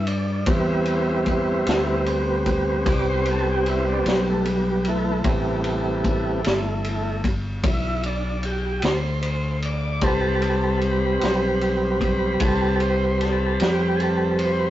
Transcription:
Already playing: G2
0.07 D4, ride
0.46 E2 G3 B3 C4 E4, kick, ride
0.86 ride
1.26 kick, ride
1.67 D2, snare, ride
2.06 ride
2.46 kick, ride
2.86 C2 D5, kick, ride
3.10 C5
3.26 ride
3.31 A4
3.52 G4
3.66 E4, ride
3.88 D4
4.06 B1, snare, ride
4.10 C4
4.30 A3
4.45 ride
4.50 G3
4.85 E3, ride
4.89 A3
5.24 A1 C3 G3 B3, kick, ride
5.64 ride
6.04 kick, ride
6.44 G1, snare, ride
6.84 ride
7.24 kick, ride
7.63 B1 E4, kick, ride
8.03 D4, ride
8.43 G4, ride
8.82 D2 C5, snare, ride
9.23 ride
9.62 D5, ride
10.01 C2 G3 C4 A4 B4, kick, ride
10.42 ride
10.81 ride
11.21 B1, snare, ride
11.61 ride
12.01 kick, ride
12.40 C2 G#4, kick, ride
12.44 A4
12.80 C5, ride
13.21 A4, snare, ride
13.60 F2 G4, snare, ride
13.96 G#4, ride
14.01 A4
14.39 C5, ride

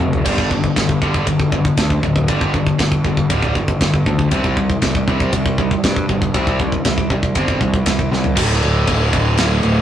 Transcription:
0.00 F#1 F2 C3, mid tom
0.13 floor tom
0.25 G1 G2 D3 G3, kick, crash, ride bell
0.38 kick
0.50 G2 D3, kick
0.64 kick
0.76 G1 G2 D3, kick, snare, ride bell
0.89 kick
1.02 G1 G2 D3 G3, kick
1.14 kick
1.27 G1 G2 D3, kick, ride bell
1.40 kick
1.52 G2 D3, kick
1.65 kick
1.77 D2 G2 D3, kick, snare, ride bell
1.90 kick
2.03 D1 G2 D3, kick
2.16 kick
2.28 G1 G2 D3 G3, kick, ride bell
2.41 kick
2.54 G2 D3, kick
2.67 kick
2.79 G1 G2 D3, kick, snare, ride bell
2.92 kick
3.04 G1 G2 D3, kick
3.17 kick
3.30 D1 G2 D3 G3, kick, ride bell
3.42 kick
3.55 G1 G2 D3, kick
3.68 kick
3.81 G1 G2 D3, kick, snare, ride bell
3.94 kick
4.06 D2 G2 D3, kick
4.19 kick
4.31 C2 C3 G3 C4, kick, ride bell
4.44 kick
4.57 C3 G3, kick
4.70 kick
4.82 C2 C3 G3, kick, snare, ride bell
4.95 kick
5.07 C2 C3 G3 C4, kick
5.20 kick
5.33 C2 C3 G3, kick, ride bell
5.46 kick
5.58 C3 G3, kick
5.71 kick
5.84 G2 C3 G3, kick, snare, ride bell
5.96 kick
6.09 G1 C3 G3, kick
6.22 kick
6.34 C2 C3 G3 C4, kick, ride bell
6.47 kick
6.60 C3 G3, kick
6.72 kick
6.85 C2 C3 G3, kick, snare, ride bell
6.98 kick
7.10 C2 C3 G3, kick
7.23 kick
7.35 G1 C3 G3 C4, kick, ride bell
7.48 kick
7.61 C2 C3 G3, kick
7.74 kick
7.86 C2 C3 G3, kick, snare, ride bell
7.99 kick
8.12 C2 C3 G3, snare
8.24 floor tom
8.36 D1 D2 A2 D3, kick, crash
8.63 D1, crash
8.87 D1, kick, crash
9.13 D1, kick, crash
9.37 D1, snare, crash
9.63 D1, crash

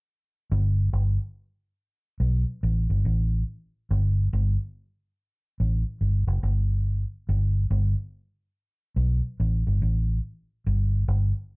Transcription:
0.52 G1
0.93 G1
2.20 B1
2.63 A1
2.90 G1
3.05 A1
3.91 G1
4.33 G1
5.60 A1
6.01 G1
6.27 F#1
6.43 G1
7.29 G1
7.70 G1
8.96 B1
9.40 A1
9.67 G1
9.82 A1
10.66 G1
11.08 G1

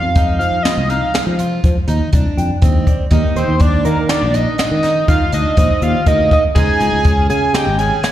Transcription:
Already playing: F3 C4 D#4 A4 F5
0.03 F2
0.15 D#4, kick, closed hi-hat
0.39 F3 F5, closed hi-hat
0.63 F4 D#5, snare, closed hi-hat
0.77 C2
0.89 D#4 F5, closed hi-hat
1.14 D#4, snare, closed hi-hat
1.26 F3
1.39 F4, closed hi-hat
1.64 F3, kick, closed hi-hat
1.88 D#2 D#4, closed hi-hat
2.13 C2 D4, kick, closed hi-hat
2.37 F2 G5, closed hi-hat
2.62 D#2 C4 D#5, kick, closed hi-hat
2.87 D5, kick, closed hi-hat
3.10 D#2 D#3 A#3 D#4 G4 A#4, kick, closed hi-hat
3.36 D#2 C4 C5, closed hi-hat
3.48 D#2
3.60 D4 D5, kick, closed hi-hat
3.85 D#3 A#3 A#4, closed hi-hat
4.09 D4 D#4 D5, snare, closed hi-hat
4.22 A#1
4.34 D4 D#4 D#5, closed hi-hat
4.58 D4 D#4 D#5, snare, closed hi-hat
4.71 D#3
4.83 D#4, snare, closed hi-hat
5.08 D#3 F4 F5, kick, snare, closed hi-hat
5.32 D2 D4 D#4 D#5, closed hi-hat
5.57 A#1 C4 D#4 D#5, kick, closed hi-hat
5.81 D#2 D#3 A#3 F4 G4 D5 F5, closed hi-hat
6.06 D2 A#3 D#4 D#5, kick, closed hi-hat
6.31 D#4 D#5, kick, closed hi-hat
6.54 C#2 C#3 G#3 D#4 F4 G#4 C5 G#5, kick, closed hi-hat
6.80 C#2, snare, closed hi-hat
6.93 C#2
7.04 C#4, kick, closed hi-hat
7.29 C#3 G#4 G#5, closed hi-hat
7.54 D#4 G4 G5, snare, closed hi-hat
7.66 G#1
7.79 C#4 G#4 G#5, closed hi-hat
8.03 C#4, snare, closed hi-hat

